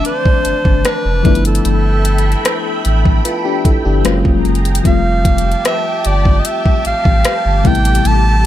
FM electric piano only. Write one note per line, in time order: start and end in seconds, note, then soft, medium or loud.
0.00 1.22 E3 medium
0.00 1.20 F3 medium
0.00 1.20 A3 medium
0.00 1.21 C4 medium
0.00 1.21 D4 medium
1.23 4.00 F3 medium
1.23 4.01 A3 medium
1.23 4.01 B3 medium
1.23 3.21 D4 medium
1.23 3.22 E4 medium
3.25 3.44 F4 medium
3.25 3.44 B4 medium
3.45 3.64 D4 medium
3.45 3.64 G4 medium
3.65 3.84 E4 medium
3.65 3.84 A4 medium
3.85 4.23 D4 medium
3.85 4.23 G4 medium
4.04 4.85 F#3 medium
4.04 4.85 G#3 medium
4.04 4.85 A#3 medium
4.04 4.85 C#4 medium
4.04 4.85 F4 medium
4.83 7.60 F3 medium
4.83 7.61 G3 medium
4.83 7.61 A3 medium
4.83 7.61 C4 medium
4.83 7.62 F4 medium
7.63 8.46 C3 medium
7.63 8.46 G3 medium
7.63 8.46 A3 medium
7.63 8.46 B3 medium
7.63 8.46 E4 medium